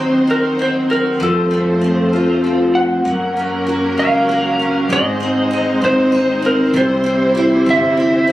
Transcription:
Already playing: upright bass D#2, steel-string acoustic guitar D#3 F#3 C4, string section F#3 C4 D#4 C5, electric slide guitar C5
0.27 steel-string acoustic guitar F#4, electric slide guitar A#4
0.59 steel-string acoustic guitar C4, electric slide guitar C5
0.90 steel-string acoustic guitar F#4, electric slide guitar A#4
1.20 upright bass F2, steel-string acoustic guitar F3, string section F3 A3 C5, electric slide guitar A4
1.51 steel-string acoustic guitar A3
1.81 steel-string acoustic guitar C4
2.13 steel-string acoustic guitar F4
2.44 steel-string acoustic guitar C4
2.75 electric slide guitar F#5
3.05 upright bass F#2, steel-string acoustic guitar F#3, string section F#3 A#3 C#4 A#4
3.37 steel-string acoustic guitar C#4
3.67 steel-string acoustic guitar F#4
3.98 upright bass C#2, steel-string acoustic guitar C#4, electric slide guitar F5
4.29 steel-string acoustic guitar F#4
4.59 steel-string acoustic guitar C#4
4.88 upright bass G#1, steel-string acoustic guitar G#2, string section G#3 C4 D#4 C5
4.93 electric slide guitar D#5
5.20 steel-string acoustic guitar C4
5.51 steel-string acoustic guitar D#4
5.82 upright bass D#2, steel-string acoustic guitar C4, electric slide guitar C5
6.12 steel-string acoustic guitar D#4
6.42 steel-string acoustic guitar C4, electric slide guitar A#4
6.74 upright bass C2, steel-string acoustic guitar C3, string section G3 E4, electric slide guitar C5
7.04 steel-string acoustic guitar C4
7.35 steel-string acoustic guitar E4
7.66 upright bass G1, steel-string acoustic guitar C4
7.70 electric slide guitar E5
7.97 steel-string acoustic guitar E4
8.27 steel-string acoustic guitar C4

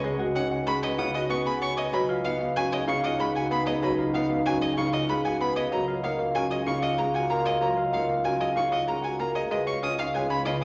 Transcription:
Already playing: double bass C#2, french horn F#4, harp B4 C#5 F#5 G#5
0.04 grand piano G#3, marimba C#5, harp D#5
0.19 marimba F#4, harp F#5
0.35 grand piano C#4, marimba D#4, violin F#5, harp G#5
0.51 marimba C#5, harp F#5
0.66 grand piano G#3, marimba C#4, harp B4, violin B5
0.82 marimba B4, harp C#5, violin D#5
0.98 grand piano C#3, marimba D#4, harp F#5, violin D#6
1.14 marimba F#4, violin D#5, harp G#5
1.30 grand piano B3, marimba C#4, harp B4, violin C#6
1.46 marimba G#4, harp G#5, violin B5
1.61 marimba C#5, harp F#5, violin C#6
1.77 marimba B4, harp C#5, violin D#5
1.93 double bass C#2, grand piano F#3, french horn D#4, marimba B4, harp D#5, violin B5
2.09 marimba F4, harp F5
2.25 grand piano B3, marimba D#4, violin F5, harp F#5
2.41 marimba B4, harp F5
2.56 grand piano F#3, marimba C#4, harp B4, violin G#5
2.72 marimba G#4, harp C#5, violin D#5
2.87 grand piano C#3, marimba D#4, harp F5, violin C#6
3.04 marimba F4, violin D#5, harp F#5
3.19 grand piano G#3, marimba C#4, harp B4, violin B5
3.35 marimba F#4, harp F#5, violin G#5
3.51 grand piano B3, marimba B4, harp F5, violin B5
3.66 marimba G#4, harp C#5, violin D#5
3.83 grand piano F#3, marimba B4, harp D#5, violin B5
3.98 marimba F4, harp F5
4.14 grand piano B3, marimba D#4, violin F5, harp F#5
4.30 marimba B4, harp F5
4.46 grand piano F#3, marimba C#4, harp B4, violin G#5
4.61 marimba G#4, harp C#5, violin D#5
4.77 grand piano C#3, marimba D#4, harp F5, violin C#6
4.93 marimba F4, violin D#5, harp F#5
5.09 grand piano G#3, marimba C#4, harp B4, violin B5
5.25 marimba F#4, harp F#5, violin G#5
5.40 grand piano B3, marimba B4, harp F5, violin B5
5.56 marimba G#4, harp C#5, violin D#5
5.72 double bass C#2, grand piano F#3, french horn F4, marimba A#4, harp D#5, violin A#5
5.88 marimba F4, harp F5
6.03 grand piano A#3, marimba D#4, violin F5, harp F#5
6.19 marimba A#4, harp F5
6.35 grand piano F#3, marimba C#4, harp A#4, violin G#5
6.51 marimba G#4, harp C#5, violin D#5
6.66 grand piano C#3, marimba D#4, harp F5, violin C#6
6.82 marimba F4, violin D#5, harp F#5
6.98 grand piano G#3, marimba C#4, harp A#4, violin A#5
7.14 marimba F#4, harp F#5, violin G#5
7.30 grand piano A#3, marimba A#4, harp F5, violin A#5
7.45 marimba G#4, harp C#5, violin D#5
7.61 grand piano F#3, marimba A#4, harp D#5, violin A#5
7.77 marimba F4, harp F5
7.93 grand piano A#3, marimba D#4, violin F5, harp F#5
8.09 marimba A#4, harp F5
8.24 grand piano F#3, marimba C#4, harp A#4, violin G#5
8.40 marimba G#4, harp C#5, violin D#5
8.55 grand piano C#3, marimba D#4, harp F5, violin C#6
8.71 marimba F4, violin D#5, harp F#5
8.87 grand piano G#3, marimba C#4, harp A#4, violin A#5
9.02 marimba F#4, harp F#5, violin G#5
9.19 grand piano A#3, marimba A#4, harp F5, violin A#5
9.35 marimba G#4, harp C#5, violin D#5
9.51 double bass C#2, grand piano G#3, french horn F4, marimba B4, harp D#5, violin D#5
9.66 french horn F4, marimba C#5, harp F5, violin C#6
9.82 grand piano C#4, french horn F4, marimba F4, harp G#5, violin D#6
9.98 marimba D#4, french horn F4, violin F5, harp F5
10.14 grand piano G#3, french horn F4, harp B4, marimba C#5, violin G#5
10.29 marimba C#4, french horn F4, harp C#5, violin B5
10.45 grand piano C#3, french horn F4, marimba B4, violin D#5, harp F5

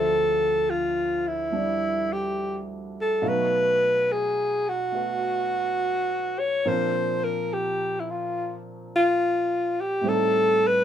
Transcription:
Already playing: grand piano D2 D3 F3 C5 E5, alto saxophone A4
0.70 alto saxophone F4
1.27 alto saxophone E4
1.51 grand piano G3 D4 E4 D5
2.13 alto saxophone G4
3.01 alto saxophone A4
3.22 grand piano B2 F#3 A3 D#4 F5
3.28 alto saxophone B4
4.12 alto saxophone G#4
4.69 alto saxophone F#4
4.92 grand piano A3 B3 F#4
6.39 alto saxophone C#5
6.65 grand piano A#2 F3 C4 D4 A#4, alto saxophone C5
7.24 alto saxophone A#4
7.54 alto saxophone G4
8.00 alto saxophone E4
8.10 alto saxophone F4
8.96 alto saxophone F4
9.81 alto saxophone G4
10.01 grand piano A2 G3
10.06 grand piano C4 D#4, alto saxophone A4
10.12 grand piano A4
10.67 alto saxophone B4

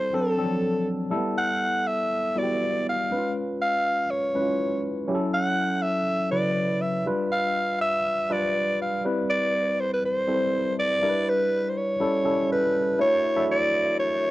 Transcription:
Already playing: tine electric piano G3 C4 E4 A4, alto saxophone C5
0.13 tine electric piano F#3 C4 D4 A4, alto saxophone A4
0.37 tine electric piano F3 C4 D4 A4
0.44 tine electric piano F#3
1.10 tine electric piano G3 A3 E4 A4
1.17 tine electric piano B3
1.38 alto saxophone F#5
1.87 alto saxophone E5
2.35 tine electric piano G3 B3 E4 F#4, alto saxophone D5
2.43 tine electric piano G4
2.89 alto saxophone F5
3.11 tine electric piano G#3 C#4 D#4 B4
3.17 tine electric piano F4
3.62 alto saxophone F5
4.11 alto saxophone C#5
4.35 tine electric piano G#3 C#4 E4 B4
4.42 tine electric piano F4
5.08 tine electric piano F#3 C#4 E4 G4
5.15 tine electric piano A4
5.34 alto saxophone F#5
5.82 alto saxophone E5
6.31 tine electric piano C#3 F#3 E4 B4, alto saxophone D5
6.82 alto saxophone E5
7.06 tine electric piano G3 D4 F4 B4
7.32 alto saxophone F5
7.81 alto saxophone E5
8.29 tine electric piano G3 D4 F4 B4, alto saxophone D5
8.82 alto saxophone F5
9.05 tine electric piano G3 C4 E4 B4
9.30 alto saxophone D5
9.80 alto saxophone C5
9.93 alto saxophone B4
10.05 alto saxophone C5
10.27 tine electric piano G3 C4 E4 A4
10.34 tine electric piano C5
10.79 alto saxophone D5
11.02 tine electric piano G3 D4 E4 A#4
11.09 tine electric piano B4
11.29 alto saxophone B4
11.69 alto saxophone C5
11.77 alto saxophone C#5
12.00 tine electric piano G3 C#4 E4 A4
12.24 tine electric piano G3 C#4 E4 A4
12.52 alto saxophone B4
12.99 tine electric piano A3 D4 E4 F#4 C#5, alto saxophone C#5
13.36 tine electric piano A3 D4 E4 F#4 E5
13.52 alto saxophone D5
14.00 alto saxophone C#5

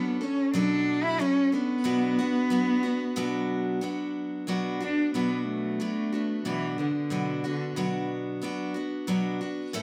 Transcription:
Already playing: steel-string acoustic guitar F#3 C#4 D4 A4, cello B3
0.14 cello B3
0.21 cello C#4, steel-string acoustic guitar C#4 A4
0.54 steel-string acoustic guitar B2 F#3 D4 A4, cello D4
1.03 cello E4
1.19 steel-string acoustic guitar F#3 C#4 A4, cello C#4
1.52 cello B3, steel-string acoustic guitar C#4 D4 A4
1.84 steel-string acoustic guitar B2 F#3 B3 D4 F#4
2.19 steel-string acoustic guitar B3 D4 F#4
2.50 steel-string acoustic guitar F#3 B3 D4 F#4
2.83 steel-string acoustic guitar B3 D4 F#4
3.16 steel-string acoustic guitar B2 F#3 B3 D4 F#4
3.81 steel-string acoustic guitar F#3 B3 D4 F#4
4.47 steel-string acoustic guitar B2 F#3 B3 D4 F#4
4.80 steel-string acoustic guitar B3 D4 F#4, cello D4
5.14 steel-string acoustic guitar B2 F#3 B3 D4 F#4, cello B3
5.47 cello A3
5.80 steel-string acoustic guitar F#3 B3 D4 F#4
6.12 steel-string acoustic guitar B3 D4 F#4
6.45 steel-string acoustic guitar B2 F#3 B3 D4 F#4, cello E3
6.78 cello D3, steel-string acoustic guitar B3 D4 F#4
6.94 cello D3
7.10 steel-string acoustic guitar B2 F#3 B3 D4 F#4
7.44 cello D3, steel-string acoustic guitar B3 D4 F#4
7.76 steel-string acoustic guitar B2 F#3 B3 D4 F#4
8.42 steel-string acoustic guitar F#3 B3 D4 F#4
8.74 steel-string acoustic guitar B3 D4 F#4
9.07 steel-string acoustic guitar B2 F#3 B3 D4 F#4
9.41 steel-string acoustic guitar B3 D4 F#4
9.73 steel-string acoustic guitar A2 E3 A3 C#4 E4 A4

